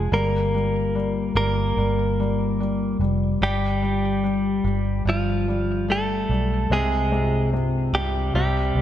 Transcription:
0, 0, Header, 1, 4, 480
1, 0, Start_track
1, 0, Key_signature, -4, "minor"
1, 0, Tempo, 821918
1, 71, Time_signature, 4, 2, 24, 8
1, 5149, End_track
2, 0, Start_track
2, 0, Title_t, "Clean electric guitar"
2, 0, Program_c, 0, 27
2, 0, Note_on_c, 0, 68, 94
2, 78, Note_off_c, 0, 68, 0
2, 79, Note_on_c, 0, 58, 74
2, 80, Note_on_c, 0, 70, 84
2, 772, Note_off_c, 0, 58, 0
2, 791, Note_off_c, 0, 70, 0
2, 797, Note_on_c, 0, 58, 72
2, 799, Note_on_c, 0, 70, 85
2, 1731, Note_off_c, 0, 58, 0
2, 1732, Note_off_c, 0, 70, 0
2, 2004, Note_on_c, 0, 55, 77
2, 2005, Note_on_c, 0, 67, 75
2, 2935, Note_off_c, 0, 55, 0
2, 2971, Note_on_c, 0, 53, 70
2, 2976, Note_on_c, 0, 65, 94
2, 2986, Note_off_c, 0, 67, 0
2, 3418, Note_off_c, 0, 53, 0
2, 3446, Note_on_c, 0, 57, 76
2, 3455, Note_on_c, 0, 69, 107
2, 3458, Note_off_c, 0, 65, 0
2, 3895, Note_off_c, 0, 57, 0
2, 3925, Note_on_c, 0, 56, 73
2, 3928, Note_off_c, 0, 69, 0
2, 3930, Note_on_c, 0, 68, 84
2, 4375, Note_off_c, 0, 56, 0
2, 4377, Note_off_c, 0, 68, 0
2, 4642, Note_on_c, 0, 67, 105
2, 4646, Note_on_c, 0, 55, 79
2, 4863, Note_off_c, 0, 55, 0
2, 4869, Note_off_c, 0, 67, 0
2, 4877, Note_on_c, 0, 55, 76
2, 4878, Note_on_c, 0, 67, 92
2, 5149, Note_off_c, 0, 55, 0
2, 5149, Note_off_c, 0, 67, 0
2, 5149, End_track
3, 0, Start_track
3, 0, Title_t, "Felt piano"
3, 0, Program_c, 1, 0
3, 0, Control_c, 1, 64, 127
3, 0, Note_on_c, 1, 53, 56
3, 66, Note_off_c, 1, 53, 0
3, 70, Note_on_c, 1, 55, 67
3, 79, Control_c, 1, 64, 0
3, 194, Control_c, 1, 64, 127
3, 307, Note_off_c, 1, 55, 0
3, 316, Note_on_c, 1, 55, 54
3, 546, Note_off_c, 1, 55, 0
3, 555, Note_on_c, 1, 55, 59
3, 792, Note_off_c, 1, 55, 0
3, 801, Note_on_c, 1, 55, 56
3, 1029, Note_off_c, 1, 55, 0
3, 1038, Note_on_c, 1, 55, 59
3, 1274, Note_off_c, 1, 55, 0
3, 1283, Note_on_c, 1, 55, 57
3, 1511, Note_off_c, 1, 55, 0
3, 1519, Note_on_c, 1, 55, 54
3, 1747, Note_off_c, 1, 55, 0
3, 1756, Note_on_c, 1, 55, 53
3, 1987, Note_off_c, 1, 55, 0
3, 1997, Note_on_c, 1, 55, 66
3, 2000, Control_c, 1, 64, 0
3, 2116, Control_c, 1, 64, 127
3, 2224, Note_off_c, 1, 55, 0
3, 2233, Note_on_c, 1, 55, 55
3, 2466, Note_off_c, 1, 55, 0
3, 2475, Note_on_c, 1, 55, 62
3, 2703, Note_off_c, 1, 55, 0
3, 2712, Note_on_c, 1, 55, 55
3, 2942, Note_off_c, 1, 55, 0
3, 2951, Note_on_c, 1, 55, 56
3, 3192, Note_off_c, 1, 55, 0
3, 3200, Note_on_c, 1, 55, 59
3, 3427, Note_off_c, 1, 55, 0
3, 3436, Note_on_c, 1, 55, 58
3, 3670, Note_off_c, 1, 55, 0
3, 3679, Note_on_c, 1, 55, 55
3, 3908, Note_off_c, 1, 55, 0
3, 3920, Control_c, 1, 64, 0
3, 3921, Note_on_c, 1, 48, 72
3, 4023, Control_c, 1, 64, 127
3, 4149, Note_off_c, 1, 48, 0
3, 4158, Note_on_c, 1, 48, 55
3, 4390, Note_off_c, 1, 48, 0
3, 4399, Note_on_c, 1, 48, 55
3, 4632, Note_off_c, 1, 48, 0
3, 4640, Note_on_c, 1, 48, 52
3, 4869, Note_off_c, 1, 48, 0
3, 4879, Note_on_c, 1, 48, 68
3, 4880, Control_c, 1, 64, 0
3, 4990, Control_c, 1, 64, 127
3, 5117, Note_on_c, 1, 55, 54
3, 5149, Note_off_c, 1, 48, 0
3, 5149, Note_off_c, 1, 55, 0
3, 5149, End_track
4, 0, Start_track
4, 0, Title_t, "Fingered electric bass"
4, 0, Program_c, 2, 33
4, 69, Note_on_c, 2, 31, 111
4, 767, Note_off_c, 2, 31, 0
4, 788, Note_on_c, 2, 31, 98
4, 1013, Note_off_c, 2, 31, 0
4, 1031, Note_on_c, 2, 31, 96
4, 1728, Note_off_c, 2, 31, 0
4, 1747, Note_on_c, 2, 29, 80
4, 1972, Note_off_c, 2, 29, 0
4, 1992, Note_on_c, 2, 31, 99
4, 2688, Note_off_c, 2, 31, 0
4, 2710, Note_on_c, 2, 31, 93
4, 2934, Note_off_c, 2, 31, 0
4, 2949, Note_on_c, 2, 31, 93
4, 3647, Note_off_c, 2, 31, 0
4, 3675, Note_on_c, 2, 35, 88
4, 3897, Note_off_c, 2, 35, 0
4, 3913, Note_on_c, 2, 36, 109
4, 4609, Note_off_c, 2, 36, 0
4, 4633, Note_on_c, 2, 36, 94
4, 4856, Note_off_c, 2, 36, 0
4, 4872, Note_on_c, 2, 36, 98
4, 5095, Note_off_c, 2, 36, 0
4, 5112, Note_on_c, 2, 36, 93
4, 5149, Note_off_c, 2, 36, 0
4, 5149, End_track
0, 0, End_of_file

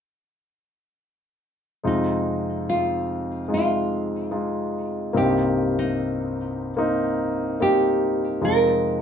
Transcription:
0, 0, Header, 1, 3, 480
1, 0, Start_track
1, 0, Key_signature, -4, "minor"
1, 0, Tempo, 821918
1, 1080, Time_signature, 4, 2, 24, 8
1, 5266, End_track
2, 0, Start_track
2, 0, Title_t, "Nylon-string guitar"
2, 0, Program_c, 0, 24
2, 1094, Note_on_c, 0, 63, 44
2, 1543, Note_off_c, 0, 63, 0
2, 1574, Note_on_c, 0, 65, 50
2, 2023, Note_off_c, 0, 65, 0
2, 2066, Note_on_c, 0, 65, 61
2, 2990, Note_off_c, 0, 65, 0
2, 3021, Note_on_c, 0, 67, 65
2, 3380, Note_on_c, 0, 63, 51
2, 3381, Note_off_c, 0, 67, 0
2, 4067, Note_off_c, 0, 63, 0
2, 4452, Note_on_c, 0, 67, 60
2, 4902, Note_off_c, 0, 67, 0
2, 4934, Note_on_c, 0, 70, 63
2, 5266, Note_off_c, 0, 70, 0
2, 5266, End_track
3, 0, Start_track
3, 0, Title_t, "Grand piano"
3, 0, Program_c, 1, 0
3, 1072, Note_on_c, 1, 56, 47
3, 1076, Note_on_c, 1, 48, 38
3, 1077, Note_on_c, 1, 63, 44
3, 1079, Note_on_c, 1, 41, 40
3, 1081, Note_on_c, 1, 65, 53
3, 1175, Control_c, 1, 64, 127
3, 1988, Note_off_c, 1, 56, 0
3, 1990, Note_off_c, 1, 63, 0
3, 1993, Note_off_c, 1, 65, 0
3, 2033, Note_on_c, 1, 56, 47
3, 2037, Note_on_c, 1, 63, 41
3, 2043, Note_on_c, 1, 65, 44
3, 2492, Note_off_c, 1, 56, 0
3, 2494, Note_off_c, 1, 63, 0
3, 2497, Note_off_c, 1, 65, 0
3, 2518, Note_on_c, 1, 56, 42
3, 2520, Note_on_c, 1, 63, 35
3, 2523, Note_on_c, 1, 65, 45
3, 2975, Note_off_c, 1, 48, 0
3, 2975, Note_off_c, 1, 56, 0
3, 2976, Note_off_c, 1, 41, 0
3, 2976, Note_off_c, 1, 63, 0
3, 2977, Note_off_c, 1, 65, 0
3, 2997, Note_on_c, 1, 58, 51
3, 3002, Note_on_c, 1, 36, 43
3, 3003, Note_on_c, 1, 43, 42
3, 3003, Note_on_c, 1, 60, 45
3, 3008, Control_c, 1, 64, 0
3, 3008, Note_on_c, 1, 63, 48
3, 3123, Control_c, 1, 64, 127
3, 3910, Note_off_c, 1, 58, 0
3, 3913, Note_off_c, 1, 60, 0
3, 3916, Note_off_c, 1, 63, 0
3, 3951, Note_on_c, 1, 58, 53
3, 3955, Note_on_c, 1, 60, 48
3, 3962, Note_on_c, 1, 63, 65
3, 4411, Note_off_c, 1, 58, 0
3, 4413, Note_off_c, 1, 60, 0
3, 4417, Note_off_c, 1, 63, 0
3, 4440, Note_on_c, 1, 58, 45
3, 4441, Note_on_c, 1, 60, 37
3, 4448, Note_on_c, 1, 63, 47
3, 4896, Note_off_c, 1, 58, 0
3, 4896, Note_off_c, 1, 60, 0
3, 4897, Note_off_c, 1, 36, 0
3, 4898, Note_off_c, 1, 43, 0
3, 4900, Note_off_c, 1, 63, 0
3, 4913, Note_on_c, 1, 56, 48
3, 4914, Note_on_c, 1, 48, 40
3, 4915, Note_on_c, 1, 41, 44
3, 4917, Note_on_c, 1, 63, 45
3, 4920, Note_on_c, 1, 65, 50
3, 4927, Control_c, 1, 64, 0
3, 5031, Control_c, 1, 64, 127
3, 5266, Note_off_c, 1, 41, 0
3, 5266, Note_off_c, 1, 48, 0
3, 5266, Note_off_c, 1, 56, 0
3, 5266, Note_off_c, 1, 63, 0
3, 5266, Note_off_c, 1, 65, 0
3, 5266, End_track
0, 0, End_of_file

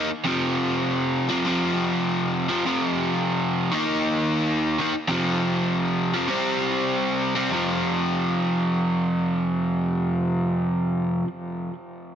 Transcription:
0, 0, Header, 1, 2, 480
1, 0, Start_track
1, 0, Tempo, 303337
1, 386, Time_signature, 4, 2, 24, 8
1, 19226, End_track
2, 0, Start_track
2, 0, Title_t, "Overdriven electric guitar"
2, 0, Program_c, 0, 29
2, 391, Note_on_c, 0, 41, 98
2, 416, Note_on_c, 0, 48, 110
2, 441, Note_on_c, 0, 53, 114
2, 2030, Note_off_c, 0, 53, 0
2, 2037, Note_on_c, 0, 53, 92
2, 2044, Note_off_c, 0, 48, 0
2, 2063, Note_on_c, 0, 48, 90
2, 2081, Note_off_c, 0, 41, 0
2, 2087, Note_on_c, 0, 41, 78
2, 2272, Note_off_c, 0, 41, 0
2, 2279, Note_on_c, 0, 41, 107
2, 2285, Note_off_c, 0, 48, 0
2, 2303, Note_on_c, 0, 48, 112
2, 2326, Note_off_c, 0, 53, 0
2, 2332, Note_on_c, 0, 53, 118
2, 3925, Note_off_c, 0, 53, 0
2, 3944, Note_on_c, 0, 53, 97
2, 3946, Note_off_c, 0, 41, 0
2, 3951, Note_off_c, 0, 48, 0
2, 3970, Note_on_c, 0, 48, 81
2, 3985, Note_on_c, 0, 41, 77
2, 4179, Note_off_c, 0, 41, 0
2, 4181, Note_off_c, 0, 53, 0
2, 4194, Note_off_c, 0, 48, 0
2, 4198, Note_on_c, 0, 41, 96
2, 4222, Note_on_c, 0, 48, 102
2, 4237, Note_on_c, 0, 53, 98
2, 5866, Note_off_c, 0, 41, 0
2, 5874, Note_off_c, 0, 48, 0
2, 5880, Note_on_c, 0, 51, 82
2, 5885, Note_off_c, 0, 53, 0
2, 5903, Note_on_c, 0, 58, 89
2, 5927, Note_on_c, 0, 63, 96
2, 7548, Note_off_c, 0, 51, 0
2, 7560, Note_off_c, 0, 58, 0
2, 7572, Note_off_c, 0, 63, 0
2, 7574, Note_on_c, 0, 51, 71
2, 7596, Note_on_c, 0, 58, 72
2, 7617, Note_on_c, 0, 63, 83
2, 7795, Note_off_c, 0, 51, 0
2, 7806, Note_off_c, 0, 58, 0
2, 7817, Note_off_c, 0, 63, 0
2, 8036, Note_on_c, 0, 41, 80
2, 8060, Note_on_c, 0, 48, 91
2, 8082, Note_on_c, 0, 53, 109
2, 9694, Note_off_c, 0, 53, 0
2, 9708, Note_off_c, 0, 41, 0
2, 9713, Note_on_c, 0, 53, 85
2, 9721, Note_off_c, 0, 48, 0
2, 9743, Note_on_c, 0, 48, 67
2, 9762, Note_on_c, 0, 41, 64
2, 9911, Note_off_c, 0, 48, 0
2, 9930, Note_on_c, 0, 48, 92
2, 9946, Note_off_c, 0, 53, 0
2, 9953, Note_on_c, 0, 55, 95
2, 9971, Note_off_c, 0, 41, 0
2, 9976, Note_on_c, 0, 60, 102
2, 11614, Note_off_c, 0, 60, 0
2, 11618, Note_off_c, 0, 48, 0
2, 11630, Note_off_c, 0, 55, 0
2, 11633, Note_on_c, 0, 60, 75
2, 11656, Note_on_c, 0, 55, 66
2, 11681, Note_on_c, 0, 48, 59
2, 11859, Note_on_c, 0, 41, 82
2, 11868, Note_off_c, 0, 60, 0
2, 11874, Note_off_c, 0, 48, 0
2, 11880, Note_off_c, 0, 55, 0
2, 11893, Note_on_c, 0, 48, 84
2, 11928, Note_on_c, 0, 53, 94
2, 17767, Note_off_c, 0, 41, 0
2, 17801, Note_off_c, 0, 48, 0
2, 17836, Note_off_c, 0, 53, 0
2, 19226, End_track
0, 0, End_of_file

